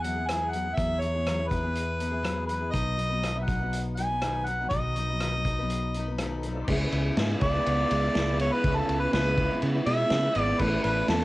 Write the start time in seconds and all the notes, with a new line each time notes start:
Already playing: E2
0.02 F#3 B3 E4 F#5, closed hi-hat
0.07 G#4
0.16 B3 E4 G#4
0.27 E3 F#3 B3 G#5, cross-stick, closed hi-hat
0.31 E4 G#4
0.50 F#3 F#5, closed hi-hat
0.55 B3 E4 G#4
0.65 B3 E4 G#4
0.75 E2 E3 F#3 B3 E5, kick, closed hi-hat
0.79 E4 G#4
1.00 F#3 B3 C#5, closed hi-hat
1.04 E4 G#4
1.14 B3 E4 G#4
1.26 E3 F#3 B3 E4 G#4, cross-stick, closed hi-hat
1.38 B3 E4 G#4
1.47 F#3 B3 B4, kick, closed hi-hat
1.52 E4 G#4
1.63 B3 E4 G#4
1.75 closed hi-hat
1.99 F#3 B3 E4 G#4, closed hi-hat
2.11 B3 E4 G#4
2.23 E3 F#3 B3 E4 G#4, cross-stick, closed hi-hat
2.46 F#3 B3 B4, closed hi-hat
2.50 E4 G#4
2.61 B3 E4 G#4
2.71 B1 B2 D#3 F#3 B3 D#4 B4 D#5, kick, closed hi-hat
2.97 F#3 B3 D#4 B4, closed hi-hat
3.09 F#3 B3 D#4 B4
3.22 B2 D#3 F#3 B3 D#4 B4, cross-stick, closed hi-hat
3.34 F#3 B3 D#4 B4 E5
3.44 F#3 F#5
3.48 B3 D#4 B4, kick, closed hi-hat
3.60 F#3 B3 D#4 B4
3.73 closed hi-hat
3.96 F#3 B3 D#4 G#5, closed hi-hat
4.01 B4
4.09 F#3 B3 D#4 B4
4.21 B2 D#3 F#3 B3 D#4 B4, cross-stick, closed hi-hat
4.46 F#3 B3 D#4 F#5, closed hi-hat
4.50 B4
4.60 F#3 B3 D#4 B4
4.69 B1 B2 D#3 F#3 B3 D#5, kick, closed hi-hat
4.74 D#4 B4
4.96 F#3 B3 D#4, closed hi-hat
5.00 B4
5.09 F#3 B3 D#4 B4
5.20 B2 D#3 F#3 B3 D#4 B4, cross-stick, closed hi-hat
5.35 F#3 B3 D#4 B4
5.45 F#3 B3, kick, closed hi-hat
5.49 D#4 B4
5.59 F#3 B3 D#4 B4
5.70 closed hi-hat
5.94 F#3 B3, closed hi-hat
5.98 D#4 B4
6.08 F#3 B3 D#4 B4
6.18 B2 D#3 F#3 B3, cross-stick, closed hi-hat
6.22 D#4 B4
6.37 A3 B3
6.42 F#3 B3 C4 D4, closed hi-hat
6.47 D#4 E4 F4 B4
6.53 G4 A4
6.60 B4 C5
6.64 C#2 C#3 B3 E4 G#4 D5, kick, crash
6.69 C#3 G#3 B3 E4 B4
6.92 C#2, ride
7.17 G#2 C#3 G#3 B3 E4 B4, snare, ride
7.41 C#2 G#3 B3 E4 D5, kick, ride
7.45 B4
7.54 B3 E4 B4
7.66 C#2 B3, ride
7.79 B3 E4 B4
7.91 C#2 G#3 B3 E4, ride
7.95 B4
8.15 C#2 C#3 G#3 B3 E4, snare, ride
8.19 B4
8.28 B3 E4 B4
8.39 G#3 B3 E4 C#5, ride
8.44 B4
8.52 E4 B4
8.56 B3
8.64 C#2 C#3 G#3 B3 E4 B4, kick, ride
8.75 A4
8.89 C#2, ride
8.99 B4
9.13 C#2 C#3 G#3 B3 E4 B4, snare, ride
9.37 G#3 B3 E4 B4, kick, ride
9.51 B3 E4 B4
9.62 C#3 B3, ride
9.74 B3 E4 B4
9.86 B2 G#3 B3 E4 B4 E5, ride
10.10 C#3 G#3 B3 E4 B4, snare, ride
10.23 B3 E4 B4
10.35 G#1 G#3 B3 E4 B4, ride
10.41 D5
10.46 B3 E4 B4
10.59 A1 A2 A3 B3 C#4 E4 A4 B4, kick, crash
10.83 A1 B4, ride
11.08 E2 A3 B3 C#4 E4 A4 B4, snare, ride